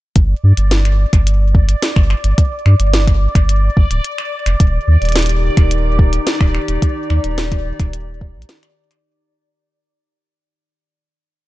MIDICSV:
0, 0, Header, 1, 5, 480
1, 0, Start_track
1, 0, Tempo, 555556
1, 136, Time_signature, 4, 2, 24, 8
1, 9916, End_track
2, 0, Start_track
2, 0, Title_t, "Synth texture"
2, 0, Program_c, 0, 99
2, 135, Note_on_c, 0, 74, 79
2, 7825, Note_off_c, 0, 74, 0
2, 9916, End_track
3, 0, Start_track
3, 0, Title_t, "Ambient pad"
3, 0, Program_c, 1, 92
3, 3976, Note_on_c, 1, 51, 70
3, 4092, Note_on_c, 1, 67, 79
3, 4251, Note_on_c, 1, 63, 90
3, 5151, Note_on_c, 1, 74, 92
3, 7814, Note_off_c, 1, 67, 0
3, 7816, Note_off_c, 1, 51, 0
3, 7816, Note_off_c, 1, 63, 0
3, 7816, Note_off_c, 1, 74, 0
3, 9916, End_track
4, 0, Start_track
4, 0, Title_t, "Sub bass"
4, 0, Program_c, 2, 38
4, 136, Note_on_c, 2, 31, 95
4, 295, Note_off_c, 2, 31, 0
4, 376, Note_on_c, 2, 43, 84
4, 455, Note_off_c, 2, 43, 0
4, 495, Note_on_c, 2, 31, 79
4, 910, Note_off_c, 2, 31, 0
4, 976, Note_on_c, 2, 31, 91
4, 1511, Note_off_c, 2, 31, 0
4, 1696, Note_on_c, 2, 31, 80
4, 1855, Note_off_c, 2, 31, 0
4, 1936, Note_on_c, 2, 31, 101
4, 2015, Note_off_c, 2, 31, 0
4, 2295, Note_on_c, 2, 43, 87
4, 2375, Note_off_c, 2, 43, 0
4, 2416, Note_on_c, 2, 31, 81
4, 2831, Note_off_c, 2, 31, 0
4, 2896, Note_on_c, 2, 31, 95
4, 3191, Note_off_c, 2, 31, 0
4, 3256, Note_on_c, 2, 31, 79
4, 3335, Note_off_c, 2, 31, 0
4, 3375, Note_on_c, 2, 26, 79
4, 3455, Note_off_c, 2, 26, 0
4, 3854, Note_on_c, 2, 29, 99
4, 3934, Note_off_c, 2, 29, 0
4, 3975, Note_on_c, 2, 27, 94
4, 4134, Note_off_c, 2, 27, 0
4, 4213, Note_on_c, 2, 39, 86
4, 4294, Note_off_c, 2, 39, 0
4, 4334, Note_on_c, 2, 27, 80
4, 4750, Note_off_c, 2, 27, 0
4, 4815, Note_on_c, 2, 27, 96
4, 5350, Note_off_c, 2, 27, 0
4, 5535, Note_on_c, 2, 27, 77
4, 5694, Note_off_c, 2, 27, 0
4, 5775, Note_on_c, 2, 27, 101
4, 5855, Note_off_c, 2, 27, 0
4, 6135, Note_on_c, 2, 39, 85
4, 6215, Note_off_c, 2, 39, 0
4, 6256, Note_on_c, 2, 27, 80
4, 6671, Note_off_c, 2, 27, 0
4, 6735, Note_on_c, 2, 27, 99
4, 7216, Note_on_c, 2, 34, 95
4, 7229, Note_off_c, 2, 27, 0
4, 7295, Note_off_c, 2, 34, 0
4, 9916, End_track
5, 0, Start_track
5, 0, Title_t, "Drums"
5, 136, Note_on_c, 9, 36, 108
5, 136, Note_on_c, 9, 42, 62
5, 222, Note_off_c, 9, 42, 0
5, 223, Note_off_c, 9, 36, 0
5, 496, Note_on_c, 9, 42, 55
5, 582, Note_off_c, 9, 42, 0
5, 615, Note_on_c, 9, 38, 114
5, 615, Note_on_c, 9, 42, 67
5, 702, Note_off_c, 9, 38, 0
5, 702, Note_off_c, 9, 42, 0
5, 737, Note_on_c, 9, 26, 37
5, 737, Note_on_c, 9, 42, 35
5, 823, Note_off_c, 9, 26, 0
5, 823, Note_off_c, 9, 42, 0
5, 976, Note_on_c, 9, 26, 53
5, 976, Note_on_c, 9, 36, 101
5, 976, Note_on_c, 9, 42, 51
5, 1063, Note_off_c, 9, 26, 0
5, 1063, Note_off_c, 9, 36, 0
5, 1063, Note_off_c, 9, 42, 0
5, 1096, Note_on_c, 9, 42, 64
5, 1183, Note_off_c, 9, 42, 0
5, 1336, Note_on_c, 9, 36, 106
5, 1423, Note_off_c, 9, 36, 0
5, 1457, Note_on_c, 9, 42, 53
5, 1544, Note_off_c, 9, 42, 0
5, 1577, Note_on_c, 9, 38, 113
5, 1577, Note_on_c, 9, 42, 66
5, 1663, Note_off_c, 9, 38, 0
5, 1663, Note_off_c, 9, 42, 0
5, 1696, Note_on_c, 9, 26, 74
5, 1696, Note_on_c, 9, 36, 100
5, 1783, Note_off_c, 9, 26, 0
5, 1783, Note_off_c, 9, 36, 0
5, 1816, Note_on_c, 9, 26, 61
5, 1903, Note_off_c, 9, 26, 0
5, 1936, Note_on_c, 9, 42, 51
5, 2023, Note_off_c, 9, 42, 0
5, 2056, Note_on_c, 9, 36, 112
5, 2056, Note_on_c, 9, 42, 62
5, 2143, Note_off_c, 9, 36, 0
5, 2143, Note_off_c, 9, 42, 0
5, 2296, Note_on_c, 9, 26, 58
5, 2383, Note_off_c, 9, 26, 0
5, 2416, Note_on_c, 9, 42, 54
5, 2503, Note_off_c, 9, 42, 0
5, 2536, Note_on_c, 9, 38, 122
5, 2536, Note_on_c, 9, 42, 69
5, 2622, Note_off_c, 9, 38, 0
5, 2622, Note_off_c, 9, 42, 0
5, 2656, Note_on_c, 9, 36, 80
5, 2657, Note_on_c, 9, 26, 36
5, 2657, Note_on_c, 9, 42, 36
5, 2742, Note_off_c, 9, 36, 0
5, 2743, Note_off_c, 9, 26, 0
5, 2743, Note_off_c, 9, 42, 0
5, 2896, Note_on_c, 9, 36, 110
5, 2897, Note_on_c, 9, 26, 50
5, 2897, Note_on_c, 9, 42, 53
5, 2982, Note_off_c, 9, 36, 0
5, 2983, Note_off_c, 9, 26, 0
5, 2983, Note_off_c, 9, 42, 0
5, 3017, Note_on_c, 9, 42, 60
5, 3103, Note_off_c, 9, 42, 0
5, 3256, Note_on_c, 9, 36, 107
5, 3342, Note_off_c, 9, 36, 0
5, 3376, Note_on_c, 9, 42, 52
5, 3462, Note_off_c, 9, 42, 0
5, 3495, Note_on_c, 9, 42, 66
5, 3581, Note_off_c, 9, 42, 0
5, 3615, Note_on_c, 9, 26, 75
5, 3701, Note_off_c, 9, 26, 0
5, 3856, Note_on_c, 9, 26, 60
5, 3856, Note_on_c, 9, 42, 51
5, 3942, Note_off_c, 9, 26, 0
5, 3942, Note_off_c, 9, 42, 0
5, 3975, Note_on_c, 9, 36, 119
5, 3975, Note_on_c, 9, 42, 63
5, 4061, Note_off_c, 9, 42, 0
5, 4062, Note_off_c, 9, 36, 0
5, 4335, Note_on_c, 9, 42, 24
5, 4365, Note_off_c, 9, 42, 0
5, 4365, Note_on_c, 9, 42, 27
5, 4395, Note_off_c, 9, 42, 0
5, 4395, Note_on_c, 9, 42, 30
5, 4425, Note_off_c, 9, 42, 0
5, 4425, Note_on_c, 9, 42, 34
5, 4455, Note_off_c, 9, 42, 0
5, 4455, Note_on_c, 9, 38, 124
5, 4455, Note_on_c, 9, 42, 67
5, 4484, Note_off_c, 9, 42, 0
5, 4484, Note_on_c, 9, 42, 40
5, 4515, Note_off_c, 9, 42, 0
5, 4515, Note_on_c, 9, 42, 43
5, 4541, Note_off_c, 9, 38, 0
5, 4545, Note_off_c, 9, 42, 0
5, 4545, Note_on_c, 9, 42, 46
5, 4575, Note_off_c, 9, 42, 0
5, 4575, Note_on_c, 9, 26, 32
5, 4575, Note_on_c, 9, 42, 36
5, 4661, Note_off_c, 9, 26, 0
5, 4661, Note_off_c, 9, 42, 0
5, 4814, Note_on_c, 9, 26, 49
5, 4814, Note_on_c, 9, 42, 52
5, 4815, Note_on_c, 9, 36, 111
5, 4901, Note_off_c, 9, 26, 0
5, 4901, Note_off_c, 9, 36, 0
5, 4901, Note_off_c, 9, 42, 0
5, 4934, Note_on_c, 9, 42, 61
5, 5021, Note_off_c, 9, 42, 0
5, 5175, Note_on_c, 9, 36, 111
5, 5261, Note_off_c, 9, 36, 0
5, 5295, Note_on_c, 9, 42, 52
5, 5382, Note_off_c, 9, 42, 0
5, 5415, Note_on_c, 9, 38, 124
5, 5415, Note_on_c, 9, 42, 64
5, 5501, Note_off_c, 9, 38, 0
5, 5501, Note_off_c, 9, 42, 0
5, 5535, Note_on_c, 9, 26, 72
5, 5535, Note_on_c, 9, 36, 106
5, 5621, Note_off_c, 9, 26, 0
5, 5621, Note_off_c, 9, 36, 0
5, 5655, Note_on_c, 9, 26, 60
5, 5742, Note_off_c, 9, 26, 0
5, 5775, Note_on_c, 9, 42, 51
5, 5861, Note_off_c, 9, 42, 0
5, 5895, Note_on_c, 9, 36, 121
5, 5895, Note_on_c, 9, 42, 62
5, 5981, Note_off_c, 9, 42, 0
5, 5982, Note_off_c, 9, 36, 0
5, 6135, Note_on_c, 9, 26, 57
5, 6222, Note_off_c, 9, 26, 0
5, 6256, Note_on_c, 9, 42, 54
5, 6342, Note_off_c, 9, 42, 0
5, 6375, Note_on_c, 9, 38, 123
5, 6375, Note_on_c, 9, 42, 61
5, 6461, Note_off_c, 9, 38, 0
5, 6461, Note_off_c, 9, 42, 0
5, 6495, Note_on_c, 9, 26, 35
5, 6495, Note_on_c, 9, 42, 36
5, 6496, Note_on_c, 9, 36, 83
5, 6581, Note_off_c, 9, 26, 0
5, 6581, Note_off_c, 9, 42, 0
5, 6582, Note_off_c, 9, 36, 0
5, 6735, Note_on_c, 9, 26, 48
5, 6735, Note_on_c, 9, 42, 49
5, 6736, Note_on_c, 9, 36, 108
5, 6822, Note_off_c, 9, 26, 0
5, 6822, Note_off_c, 9, 36, 0
5, 6822, Note_off_c, 9, 42, 0
5, 6855, Note_on_c, 9, 42, 61
5, 6942, Note_off_c, 9, 42, 0
5, 7096, Note_on_c, 9, 36, 111
5, 7182, Note_off_c, 9, 36, 0
5, 7275, Note_on_c, 9, 42, 50
5, 7335, Note_off_c, 9, 42, 0
5, 7335, Note_on_c, 9, 38, 123
5, 7335, Note_on_c, 9, 42, 65
5, 7421, Note_off_c, 9, 38, 0
5, 7421, Note_off_c, 9, 42, 0
5, 7456, Note_on_c, 9, 26, 68
5, 7456, Note_on_c, 9, 42, 35
5, 7542, Note_off_c, 9, 26, 0
5, 7542, Note_off_c, 9, 42, 0
5, 7697, Note_on_c, 9, 26, 58
5, 7697, Note_on_c, 9, 42, 53
5, 7783, Note_off_c, 9, 26, 0
5, 7783, Note_off_c, 9, 42, 0
5, 9916, End_track
0, 0, End_of_file